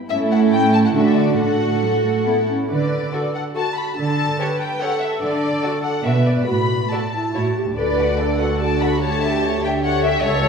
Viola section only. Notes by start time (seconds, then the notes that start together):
0.10 A3 C#4
0.95 A3 D4
1.38 A3 D4
1.83 F#3
2.04 A3
2.27 B3
2.48 C#4
2.70 B4
3.14 A4
3.56 F#4
3.97 A4
4.39 B4
4.79 A4
6.03 B4
6.47 F#4
6.92 A4
7.13 E4
7.34 F#4
7.56 G4
7.77 B4
8.19 A4
8.60 F#4
9.02 G4
10.24 A4